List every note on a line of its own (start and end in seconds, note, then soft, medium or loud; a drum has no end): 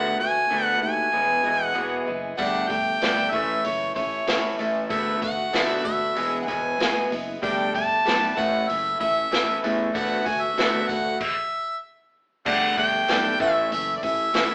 0.00 0.13 D2 medium
0.00 0.19 D3 medium
0.00 0.19 A3 medium
0.00 0.19 B3 medium
0.00 0.19 F#4 medium
0.00 0.17 F#5 medium
0.19 0.44 D2 medium
0.19 0.48 D3 medium
0.19 0.49 A3 soft
0.19 0.49 B3 soft
0.19 0.50 F#4 medium
0.19 0.65 G#5 medium
0.49 0.76 D2 medium
0.49 1.11 D3 medium
0.49 1.12 A3 medium
0.49 1.12 B3 medium
0.49 1.13 F#4 medium
0.65 0.78 F#5 medium
0.82 1.07 D#2 medium
0.82 1.10 D3 medium
0.82 1.11 A3 medium
0.82 1.65 G#5 medium
1.12 1.38 E1 medium
1.12 1.43 E2 medium
1.12 1.43 B2 medium
1.12 1.44 E3 medium
1.12 1.43 G#3 medium
1.12 1.42 B3 medium
1.12 1.42 G#4 medium
1.43 1.70 E1 medium
1.43 1.75 E2 medium
1.43 1.75 B2 medium
1.43 1.73 E3 soft
1.43 1.73 G#3 soft
1.43 1.73 B3 soft
1.43 1.73 G#4 soft
1.65 2.04 F#5 medium
1.74 2.01 E1 medium
1.74 2.06 E2 medium
1.74 2.06 B2 medium
1.74 2.06 E3 medium
1.74 2.05 G#3 medium
1.74 2.05 B3 medium
1.74 2.04 G#4 medium
2.05 2.33 F#1 medium
2.05 2.36 E2 medium
2.05 2.36 B2 medium
2.05 2.37 E3 soft
2.05 2.37 G#3 soft
2.05 2.38 B3 medium
2.05 2.38 G#4 soft
2.37 2.64 G1 medium
2.37 2.70 G3 medium
2.37 2.70 A3 medium
2.37 2.68 D4 medium
2.37 2.67 G4 medium
2.37 2.70 F#5 medium
2.37 kick medium
2.37 open hi-hat medium
2.68 2.95 G1 medium
2.68 2.99 G3 medium
2.68 3.01 A3 soft
2.68 3.01 D4 soft
2.68 3.01 G4 soft
2.68 3.34 G5 medium
2.68 kick medium
2.68 open hi-hat soft
3.01 3.27 G1 medium
3.01 3.32 G3 medium
3.01 3.31 A3 medium
3.01 3.32 D4 medium
3.01 3.31 G4 medium
3.01 snare loud
3.01 open hi-hat medium
3.31 3.58 A1 medium
3.31 3.96 A2 soft
3.31 3.96 E3 soft
3.31 3.95 A3 soft
3.31 3.94 C#4 soft
3.31 3.93 E4 soft
3.31 3.66 E5 medium
3.31 kick medium
3.31 open hi-hat soft
3.64 3.90 F#1 medium
3.64 3.93 A2 medium
3.64 3.93 E3 medium
3.64 3.94 C#5 medium
3.64 open hi-hat medium
3.94 4.21 A1 medium
3.94 4.24 A2 medium
3.94 4.25 E3 medium
3.94 4.26 A3 soft
3.94 4.27 C#4 soft
3.94 4.27 E4 soft
3.94 4.55 C#5 medium
3.94 kick medium
3.94 open hi-hat soft
4.27 4.53 A1 medium
4.27 4.59 A2 medium
4.27 4.59 E3 medium
4.27 4.58 A3 medium
4.27 4.58 C#4 medium
4.27 4.57 E4 medium
4.27 snare loud
4.27 open hi-hat medium
4.58 4.84 A1 medium
4.58 4.89 A2 medium
4.58 4.89 E3 medium
4.58 4.88 A3 soft
4.58 4.90 C#4 soft
4.58 4.90 E4 soft
4.58 open hi-hat soft
4.89 5.16 D2 medium
4.89 5.21 D3 medium
4.89 5.22 A3 medium
4.89 5.21 B3 medium
4.89 5.20 F#4 medium
4.89 5.20 E5 medium
4.89 kick medium
4.89 open hi-hat medium
5.21 5.47 D2 medium
5.21 5.50 D3 medium
5.21 5.52 A3 soft
5.21 5.52 B3 soft
5.21 5.53 F#4 soft
5.21 5.67 F#5 medium
5.21 kick medium
5.21 open hi-hat soft
5.52 5.79 D2 medium
5.52 6.15 D3 medium
5.52 6.16 A3 medium
5.52 6.16 B3 medium
5.52 6.17 F#4 medium
5.52 snare loud
5.52 open hi-hat medium
5.67 5.81 E5 medium
5.84 6.10 D2 medium
5.84 6.13 D3 medium
5.84 6.13 A3 medium
5.84 6.42 E5 medium
5.84 kick medium
5.84 open hi-hat soft
6.15 6.42 E1 medium
6.15 6.46 E2 medium
6.15 6.46 B2 medium
6.15 6.47 E3 medium
6.15 6.48 G#3 medium
6.15 6.47 B3 medium
6.15 6.46 G#4 medium
6.15 open hi-hat medium
6.40 6.47 F#5 medium
6.45 6.73 E1 medium
6.45 6.77 E2 medium
6.45 6.78 B2 medium
6.45 6.79 G#3 soft
6.45 6.79 B3 soft
6.45 6.79 G#4 soft
6.45 7.10 G#5 medium
6.45 kick medium
6.45 open hi-hat soft
6.49 6.79 E3 soft
6.79 7.04 E1 medium
6.79 7.11 E2 medium
6.79 7.11 B2 medium
6.79 7.11 E3 medium
6.79 7.11 G#3 medium
6.79 7.10 B3 medium
6.79 7.09 G#4 medium
6.79 snare loud
6.79 open hi-hat medium
7.10 7.36 F#1 medium
7.10 7.39 E2 medium
7.10 7.40 B2 medium
7.10 7.42 E3 soft
7.10 7.42 G#3 soft
7.10 7.43 B3 soft
7.10 7.42 G#4 soft
7.10 open hi-hat soft
7.42 7.68 G1 medium
7.42 7.74 G3 medium
7.42 7.74 A3 medium
7.42 7.74 D4 medium
7.42 7.73 G4 medium
7.42 7.72 G5 medium
7.42 kick loud
7.42 open hi-hat medium
7.74 7.99 G1 medium
7.74 8.02 G3 medium
7.74 8.04 A3 soft
7.74 8.04 D4 soft
7.74 8.05 G4 soft
7.74 8.40 A5 medium
7.74 kick medium
7.74 open hi-hat soft
8.05 8.31 B1 medium
8.05 8.37 G3 medium
8.05 8.36 A3 medium
8.05 8.36 D4 medium
8.05 8.35 G4 medium
8.05 snare medium
8.05 open hi-hat medium
8.36 8.62 A1 medium
8.36 9.00 A2 soft
8.36 9.00 E3 soft
8.36 9.00 A3 soft
8.36 9.00 C#4 medium
8.36 8.99 E4 medium
8.36 8.70 F#5 medium
8.36 kick medium
8.36 open hi-hat soft
8.68 8.94 F#1 medium
8.68 8.96 A2 medium
8.68 8.97 E3 medium
8.68 9.00 E5 medium
8.68 open hi-hat medium
9.00 9.26 A1 medium
9.00 9.28 A2 medium
9.00 9.29 E3 medium
9.00 9.30 A3 soft
9.00 9.31 C#4 soft
9.00 9.31 E4 medium
9.00 9.59 E5 medium
9.00 kick medium
9.00 open hi-hat soft
9.31 9.57 A1 medium
9.31 9.63 A2 medium
9.31 9.63 E3 medium
9.31 9.63 A3 medium
9.31 9.62 C#4 medium
9.31 9.61 E4 medium
9.31 snare loud
9.31 open hi-hat medium
9.62 9.89 E2 medium
9.62 9.93 A2 medium
9.62 9.93 E3 medium
9.62 9.93 A3 soft
9.62 9.94 C#4 soft
9.62 9.94 E4 medium
9.62 open hi-hat soft
9.93 10.20 D2 medium
9.93 10.25 D3 medium
9.93 10.26 A3 medium
9.93 10.25 B3 medium
9.93 10.23 F#4 medium
9.93 10.28 F#5 medium
9.93 kick medium
9.93 open hi-hat medium
10.24 10.51 D2 medium
10.24 10.54 D3 medium
10.24 10.56 A3 soft
10.24 10.56 B3 soft
10.24 10.57 F#4 medium
10.24 10.43 G#5 medium
10.24 kick medium
10.24 open hi-hat soft
10.42 10.89 E5 medium
10.57 10.83 D2 medium
10.57 11.20 D3 medium
10.57 11.21 A3 medium
10.57 11.20 B3 medium
10.57 11.21 F#4 medium
10.57 snare loud
10.57 open hi-hat medium
10.88 11.14 D2 medium
10.88 11.18 D3 medium
10.88 11.18 A3 medium
10.88 11.19 F#5 medium
10.88 kick medium
10.88 open hi-hat soft
11.20 11.79 E5 medium
11.20 kick medium
11.20 crash medium
12.45 12.71 G1 medium
12.45 12.77 G3 medium
12.45 12.77 A3 medium
12.45 12.77 D4 medium
12.45 12.76 G4 medium
12.45 12.76 F#5 loud
12.45 kick loud
12.45 crash medium
12.77 13.03 G1 medium
12.77 13.05 G3 medium
12.77 13.08 A3 soft
12.77 13.09 D4 soft
12.77 13.09 G4 soft
12.77 13.37 G5 loud
12.77 kick medium
12.77 open hi-hat soft
13.08 13.34 B1 medium
13.08 13.40 G3 medium
13.08 13.39 A3 medium
13.08 13.40 D4 medium
13.08 13.39 G4 medium
13.08 snare medium
13.08 open hi-hat medium
13.40 13.65 A1 medium
13.40 14.04 A2 soft
13.40 14.03 E3 soft
13.40 14.03 A3 soft
13.40 14.02 C#4 medium
13.40 14.01 E4 medium
13.40 13.70 E5 medium
13.40 kick medium
13.40 open hi-hat soft
13.71 13.97 F#1 medium
13.71 14.00 A2 medium
13.71 14.00 E3 medium
13.71 13.95 E5 medium
13.71 open hi-hat medium
13.96 14.04 D5 soft
14.02 14.28 A1 medium
14.02 14.31 A2 medium
14.02 14.31 E3 medium
14.02 14.34 A3 soft
14.02 14.35 C#4 soft
14.02 14.34 E4 medium
14.02 14.55 E5 medium
14.02 kick medium
14.02 open hi-hat soft
14.34 14.55 A1 medium
14.34 14.55 A2 medium
14.34 14.55 E3 medium
14.34 14.55 A3 medium
14.34 14.55 C#4 medium
14.34 14.55 E4 medium
14.34 snare loud
14.34 open hi-hat medium